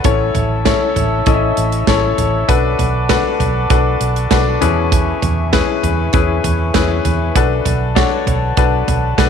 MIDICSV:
0, 0, Header, 1, 5, 480
1, 0, Start_track
1, 0, Tempo, 609137
1, 38, Time_signature, 4, 2, 24, 8
1, 7324, End_track
2, 0, Start_track
2, 0, Title_t, "Glass harmonica"
2, 0, Program_c, 0, 92
2, 37, Note_on_c, 0, 73, 68
2, 38, Note_on_c, 0, 81, 58
2, 40, Note_on_c, 0, 76, 60
2, 40, Note_on_c, 0, 88, 73
2, 1938, Note_off_c, 0, 73, 0
2, 1939, Note_off_c, 0, 76, 0
2, 1939, Note_off_c, 0, 81, 0
2, 1940, Note_off_c, 0, 88, 0
2, 1954, Note_on_c, 0, 86, 72
2, 1955, Note_on_c, 0, 78, 64
2, 1955, Note_on_c, 0, 81, 61
2, 1958, Note_on_c, 0, 71, 67
2, 3619, Note_off_c, 0, 78, 0
2, 3619, Note_off_c, 0, 81, 0
2, 3619, Note_off_c, 0, 86, 0
2, 3636, Note_on_c, 0, 85, 55
2, 3638, Note_on_c, 0, 80, 53
2, 3639, Note_on_c, 0, 76, 54
2, 5774, Note_off_c, 0, 85, 0
2, 5775, Note_off_c, 0, 76, 0
2, 5775, Note_off_c, 0, 80, 0
2, 5799, Note_on_c, 0, 78, 57
2, 5800, Note_on_c, 0, 81, 62
2, 7324, Note_off_c, 0, 71, 0
2, 7324, Note_off_c, 0, 78, 0
2, 7324, Note_off_c, 0, 81, 0
2, 7324, End_track
3, 0, Start_track
3, 0, Title_t, "Grand piano"
3, 0, Program_c, 1, 0
3, 0, Control_c, 1, 64, 127
3, 34, Note_on_c, 1, 61, 77
3, 34, Note_on_c, 1, 64, 70
3, 38, Note_on_c, 1, 69, 73
3, 41, Note_on_c, 1, 73, 91
3, 47, Control_c, 1, 64, 0
3, 199, Control_c, 1, 64, 127
3, 436, Note_off_c, 1, 61, 0
3, 436, Note_off_c, 1, 64, 0
3, 438, Note_off_c, 1, 69, 0
3, 440, Note_off_c, 1, 73, 0
3, 512, Note_on_c, 1, 61, 87
3, 516, Note_on_c, 1, 64, 73
3, 518, Note_on_c, 1, 69, 82
3, 519, Note_on_c, 1, 73, 90
3, 915, Note_off_c, 1, 61, 0
3, 917, Note_off_c, 1, 64, 0
3, 918, Note_off_c, 1, 69, 0
3, 919, Note_off_c, 1, 73, 0
3, 998, Note_on_c, 1, 61, 81
3, 999, Note_on_c, 1, 64, 67
3, 1003, Note_on_c, 1, 69, 69
3, 1005, Note_on_c, 1, 75, 67
3, 1053, Note_off_c, 1, 75, 0
3, 1059, Note_on_c, 1, 76, 78
3, 1398, Note_off_c, 1, 61, 0
3, 1399, Note_off_c, 1, 64, 0
3, 1401, Note_off_c, 1, 69, 0
3, 1428, Note_off_c, 1, 76, 0
3, 1476, Note_on_c, 1, 61, 75
3, 1479, Note_on_c, 1, 64, 82
3, 1482, Note_on_c, 1, 69, 77
3, 1486, Note_on_c, 1, 73, 93
3, 1877, Note_off_c, 1, 61, 0
3, 1879, Note_off_c, 1, 64, 0
3, 1880, Note_off_c, 1, 69, 0
3, 1882, Note_off_c, 1, 73, 0
3, 1955, Note_on_c, 1, 62, 80
3, 1956, Note_on_c, 1, 66, 72
3, 1959, Note_on_c, 1, 69, 72
3, 1962, Note_on_c, 1, 71, 93
3, 1968, Control_c, 1, 64, 0
3, 2094, Control_c, 1, 64, 127
3, 2356, Note_off_c, 1, 62, 0
3, 2357, Note_off_c, 1, 66, 0
3, 2358, Note_off_c, 1, 69, 0
3, 2360, Note_off_c, 1, 71, 0
3, 2437, Note_on_c, 1, 62, 84
3, 2440, Note_on_c, 1, 66, 80
3, 2440, Note_on_c, 1, 69, 80
3, 2443, Note_on_c, 1, 71, 90
3, 2837, Note_off_c, 1, 62, 0
3, 2839, Note_off_c, 1, 66, 0
3, 2839, Note_off_c, 1, 69, 0
3, 2840, Note_off_c, 1, 71, 0
3, 2914, Note_on_c, 1, 62, 75
3, 2916, Note_on_c, 1, 66, 69
3, 2918, Note_on_c, 1, 69, 73
3, 2923, Note_on_c, 1, 71, 82
3, 3316, Note_off_c, 1, 62, 0
3, 3317, Note_off_c, 1, 66, 0
3, 3318, Note_off_c, 1, 69, 0
3, 3320, Note_off_c, 1, 71, 0
3, 3392, Note_on_c, 1, 62, 82
3, 3394, Note_on_c, 1, 66, 72
3, 3398, Note_on_c, 1, 69, 75
3, 3399, Note_on_c, 1, 71, 82
3, 3627, Note_off_c, 1, 71, 0
3, 3633, Note_on_c, 1, 61, 82
3, 3634, Note_off_c, 1, 62, 0
3, 3636, Note_off_c, 1, 66, 0
3, 3636, Note_on_c, 1, 64, 68
3, 3636, Note_on_c, 1, 68, 76
3, 3637, Note_off_c, 1, 69, 0
3, 3637, Note_on_c, 1, 47, 67
3, 3639, Note_on_c, 1, 71, 85
3, 3646, Control_c, 1, 64, 0
3, 3766, Control_c, 1, 64, 127
3, 4235, Note_off_c, 1, 61, 0
3, 4237, Note_off_c, 1, 64, 0
3, 4237, Note_off_c, 1, 68, 0
3, 4238, Note_off_c, 1, 71, 0
3, 4325, Note_off_c, 1, 47, 0
3, 4353, Note_on_c, 1, 61, 79
3, 4354, Note_on_c, 1, 64, 74
3, 4359, Note_on_c, 1, 68, 75
3, 4359, Note_on_c, 1, 71, 98
3, 4755, Note_off_c, 1, 61, 0
3, 4756, Note_off_c, 1, 64, 0
3, 4758, Note_off_c, 1, 68, 0
3, 4758, Note_off_c, 1, 71, 0
3, 4832, Note_on_c, 1, 61, 76
3, 4835, Note_on_c, 1, 64, 70
3, 4839, Note_on_c, 1, 68, 68
3, 4839, Note_on_c, 1, 71, 83
3, 5234, Note_off_c, 1, 61, 0
3, 5236, Note_off_c, 1, 64, 0
3, 5238, Note_off_c, 1, 68, 0
3, 5238, Note_off_c, 1, 71, 0
3, 5310, Note_on_c, 1, 61, 78
3, 5314, Note_on_c, 1, 64, 75
3, 5318, Note_on_c, 1, 68, 68
3, 5320, Note_on_c, 1, 71, 91
3, 5713, Note_off_c, 1, 61, 0
3, 5715, Note_off_c, 1, 64, 0
3, 5717, Note_off_c, 1, 68, 0
3, 5718, Note_off_c, 1, 71, 0
3, 5794, Note_on_c, 1, 62, 79
3, 5798, Note_on_c, 1, 66, 67
3, 5801, Note_on_c, 1, 69, 75
3, 5803, Note_on_c, 1, 71, 85
3, 5806, Control_c, 1, 64, 0
3, 5956, Control_c, 1, 64, 127
3, 6195, Note_off_c, 1, 62, 0
3, 6197, Note_off_c, 1, 66, 0
3, 6199, Note_off_c, 1, 69, 0
3, 6199, Note_off_c, 1, 71, 0
3, 6266, Note_on_c, 1, 62, 82
3, 6270, Note_on_c, 1, 66, 80
3, 6273, Note_on_c, 1, 69, 74
3, 6274, Note_on_c, 1, 73, 88
3, 6671, Note_off_c, 1, 62, 0
3, 6673, Note_off_c, 1, 66, 0
3, 6674, Note_off_c, 1, 69, 0
3, 6675, Note_off_c, 1, 73, 0
3, 6754, Note_on_c, 1, 62, 79
3, 6756, Note_on_c, 1, 66, 68
3, 6758, Note_on_c, 1, 69, 66
3, 6762, Note_on_c, 1, 71, 81
3, 7155, Note_off_c, 1, 62, 0
3, 7155, Note_off_c, 1, 66, 0
3, 7156, Note_off_c, 1, 69, 0
3, 7158, Note_off_c, 1, 71, 0
3, 7231, Note_on_c, 1, 62, 87
3, 7234, Note_on_c, 1, 66, 75
3, 7236, Note_on_c, 1, 69, 70
3, 7238, Note_on_c, 1, 71, 93
3, 7324, Note_off_c, 1, 62, 0
3, 7324, Note_off_c, 1, 66, 0
3, 7324, Note_off_c, 1, 69, 0
3, 7324, Note_off_c, 1, 71, 0
3, 7324, End_track
4, 0, Start_track
4, 0, Title_t, "Fingered electric bass"
4, 0, Program_c, 2, 33
4, 39, Note_on_c, 2, 33, 83
4, 235, Note_off_c, 2, 33, 0
4, 278, Note_on_c, 2, 33, 86
4, 573, Note_off_c, 2, 33, 0
4, 759, Note_on_c, 2, 33, 81
4, 955, Note_off_c, 2, 33, 0
4, 997, Note_on_c, 2, 33, 87
4, 1194, Note_off_c, 2, 33, 0
4, 1242, Note_on_c, 2, 33, 87
4, 1437, Note_off_c, 2, 33, 0
4, 1478, Note_on_c, 2, 33, 97
4, 1675, Note_off_c, 2, 33, 0
4, 1718, Note_on_c, 2, 33, 81
4, 1915, Note_off_c, 2, 33, 0
4, 1961, Note_on_c, 2, 35, 84
4, 2157, Note_off_c, 2, 35, 0
4, 2205, Note_on_c, 2, 35, 88
4, 2497, Note_off_c, 2, 35, 0
4, 2679, Note_on_c, 2, 35, 89
4, 2875, Note_off_c, 2, 35, 0
4, 2919, Note_on_c, 2, 35, 79
4, 3115, Note_off_c, 2, 35, 0
4, 3158, Note_on_c, 2, 35, 88
4, 3354, Note_off_c, 2, 35, 0
4, 3397, Note_on_c, 2, 35, 86
4, 3594, Note_off_c, 2, 35, 0
4, 3641, Note_on_c, 2, 40, 91
4, 4033, Note_off_c, 2, 40, 0
4, 4125, Note_on_c, 2, 40, 86
4, 4417, Note_off_c, 2, 40, 0
4, 4596, Note_on_c, 2, 40, 85
4, 4793, Note_off_c, 2, 40, 0
4, 4837, Note_on_c, 2, 40, 82
4, 5033, Note_off_c, 2, 40, 0
4, 5081, Note_on_c, 2, 40, 82
4, 5276, Note_off_c, 2, 40, 0
4, 5315, Note_on_c, 2, 40, 89
4, 5513, Note_off_c, 2, 40, 0
4, 5557, Note_on_c, 2, 40, 76
4, 5754, Note_off_c, 2, 40, 0
4, 5795, Note_on_c, 2, 35, 85
4, 5992, Note_off_c, 2, 35, 0
4, 6034, Note_on_c, 2, 35, 84
4, 6329, Note_off_c, 2, 35, 0
4, 6513, Note_on_c, 2, 35, 80
4, 6710, Note_off_c, 2, 35, 0
4, 6756, Note_on_c, 2, 35, 87
4, 6952, Note_off_c, 2, 35, 0
4, 6993, Note_on_c, 2, 35, 85
4, 7191, Note_off_c, 2, 35, 0
4, 7235, Note_on_c, 2, 35, 92
4, 7324, Note_off_c, 2, 35, 0
4, 7324, End_track
5, 0, Start_track
5, 0, Title_t, "Drums"
5, 33, Note_on_c, 9, 42, 79
5, 37, Note_on_c, 9, 36, 103
5, 112, Note_off_c, 9, 42, 0
5, 116, Note_off_c, 9, 36, 0
5, 273, Note_on_c, 9, 43, 54
5, 275, Note_on_c, 9, 42, 70
5, 351, Note_off_c, 9, 43, 0
5, 354, Note_off_c, 9, 42, 0
5, 516, Note_on_c, 9, 38, 101
5, 519, Note_on_c, 9, 36, 99
5, 519, Note_on_c, 9, 42, 64
5, 595, Note_off_c, 9, 38, 0
5, 597, Note_off_c, 9, 36, 0
5, 598, Note_off_c, 9, 42, 0
5, 758, Note_on_c, 9, 43, 56
5, 760, Note_on_c, 9, 42, 58
5, 836, Note_off_c, 9, 43, 0
5, 839, Note_off_c, 9, 42, 0
5, 993, Note_on_c, 9, 42, 61
5, 998, Note_on_c, 9, 36, 100
5, 1072, Note_off_c, 9, 42, 0
5, 1077, Note_off_c, 9, 36, 0
5, 1237, Note_on_c, 9, 42, 61
5, 1316, Note_off_c, 9, 42, 0
5, 1358, Note_on_c, 9, 42, 54
5, 1437, Note_off_c, 9, 42, 0
5, 1476, Note_on_c, 9, 36, 87
5, 1476, Note_on_c, 9, 38, 97
5, 1476, Note_on_c, 9, 42, 77
5, 1555, Note_off_c, 9, 36, 0
5, 1555, Note_off_c, 9, 38, 0
5, 1555, Note_off_c, 9, 42, 0
5, 1719, Note_on_c, 9, 42, 63
5, 1719, Note_on_c, 9, 43, 52
5, 1798, Note_off_c, 9, 42, 0
5, 1798, Note_off_c, 9, 43, 0
5, 1960, Note_on_c, 9, 36, 92
5, 1961, Note_on_c, 9, 42, 80
5, 2038, Note_off_c, 9, 36, 0
5, 2040, Note_off_c, 9, 42, 0
5, 2198, Note_on_c, 9, 43, 58
5, 2200, Note_on_c, 9, 42, 64
5, 2277, Note_off_c, 9, 43, 0
5, 2279, Note_off_c, 9, 42, 0
5, 2437, Note_on_c, 9, 38, 103
5, 2440, Note_on_c, 9, 36, 110
5, 2440, Note_on_c, 9, 42, 73
5, 2516, Note_off_c, 9, 38, 0
5, 2518, Note_off_c, 9, 36, 0
5, 2519, Note_off_c, 9, 42, 0
5, 2679, Note_on_c, 9, 43, 59
5, 2681, Note_on_c, 9, 42, 65
5, 2758, Note_off_c, 9, 43, 0
5, 2760, Note_off_c, 9, 42, 0
5, 2916, Note_on_c, 9, 42, 70
5, 2918, Note_on_c, 9, 36, 109
5, 2994, Note_off_c, 9, 42, 0
5, 2997, Note_off_c, 9, 36, 0
5, 3157, Note_on_c, 9, 42, 67
5, 3236, Note_off_c, 9, 42, 0
5, 3280, Note_on_c, 9, 42, 48
5, 3359, Note_off_c, 9, 42, 0
5, 3394, Note_on_c, 9, 42, 81
5, 3395, Note_on_c, 9, 38, 94
5, 3396, Note_on_c, 9, 36, 84
5, 3473, Note_off_c, 9, 38, 0
5, 3473, Note_off_c, 9, 42, 0
5, 3475, Note_off_c, 9, 36, 0
5, 3638, Note_on_c, 9, 42, 66
5, 3638, Note_on_c, 9, 43, 51
5, 3717, Note_off_c, 9, 42, 0
5, 3717, Note_off_c, 9, 43, 0
5, 3877, Note_on_c, 9, 36, 96
5, 3878, Note_on_c, 9, 42, 81
5, 3956, Note_off_c, 9, 36, 0
5, 3957, Note_off_c, 9, 42, 0
5, 4116, Note_on_c, 9, 43, 65
5, 4119, Note_on_c, 9, 42, 65
5, 4195, Note_off_c, 9, 43, 0
5, 4198, Note_off_c, 9, 42, 0
5, 4356, Note_on_c, 9, 38, 100
5, 4359, Note_on_c, 9, 36, 103
5, 4360, Note_on_c, 9, 42, 67
5, 4435, Note_off_c, 9, 38, 0
5, 4437, Note_off_c, 9, 36, 0
5, 4438, Note_off_c, 9, 42, 0
5, 4597, Note_on_c, 9, 43, 59
5, 4599, Note_on_c, 9, 42, 65
5, 4676, Note_off_c, 9, 43, 0
5, 4678, Note_off_c, 9, 42, 0
5, 4829, Note_on_c, 9, 42, 66
5, 4836, Note_on_c, 9, 36, 105
5, 4908, Note_off_c, 9, 42, 0
5, 4915, Note_off_c, 9, 36, 0
5, 5076, Note_on_c, 9, 43, 63
5, 5077, Note_on_c, 9, 42, 66
5, 5155, Note_off_c, 9, 43, 0
5, 5156, Note_off_c, 9, 42, 0
5, 5312, Note_on_c, 9, 42, 80
5, 5313, Note_on_c, 9, 38, 96
5, 5315, Note_on_c, 9, 36, 90
5, 5391, Note_off_c, 9, 38, 0
5, 5391, Note_off_c, 9, 42, 0
5, 5394, Note_off_c, 9, 36, 0
5, 5555, Note_on_c, 9, 42, 66
5, 5555, Note_on_c, 9, 43, 58
5, 5634, Note_off_c, 9, 42, 0
5, 5634, Note_off_c, 9, 43, 0
5, 5796, Note_on_c, 9, 36, 92
5, 5796, Note_on_c, 9, 42, 83
5, 5875, Note_off_c, 9, 36, 0
5, 5875, Note_off_c, 9, 42, 0
5, 6032, Note_on_c, 9, 43, 61
5, 6034, Note_on_c, 9, 42, 69
5, 6110, Note_off_c, 9, 43, 0
5, 6113, Note_off_c, 9, 42, 0
5, 6276, Note_on_c, 9, 38, 103
5, 6277, Note_on_c, 9, 36, 109
5, 6279, Note_on_c, 9, 42, 70
5, 6354, Note_off_c, 9, 38, 0
5, 6355, Note_off_c, 9, 36, 0
5, 6357, Note_off_c, 9, 42, 0
5, 6517, Note_on_c, 9, 43, 63
5, 6519, Note_on_c, 9, 42, 63
5, 6596, Note_off_c, 9, 43, 0
5, 6598, Note_off_c, 9, 42, 0
5, 6753, Note_on_c, 9, 42, 72
5, 6756, Note_on_c, 9, 36, 111
5, 6832, Note_off_c, 9, 42, 0
5, 6835, Note_off_c, 9, 36, 0
5, 6997, Note_on_c, 9, 43, 66
5, 6999, Note_on_c, 9, 42, 62
5, 7076, Note_off_c, 9, 43, 0
5, 7077, Note_off_c, 9, 42, 0
5, 7235, Note_on_c, 9, 36, 87
5, 7238, Note_on_c, 9, 38, 94
5, 7238, Note_on_c, 9, 42, 80
5, 7313, Note_off_c, 9, 36, 0
5, 7316, Note_off_c, 9, 42, 0
5, 7317, Note_off_c, 9, 38, 0
5, 7324, End_track
0, 0, End_of_file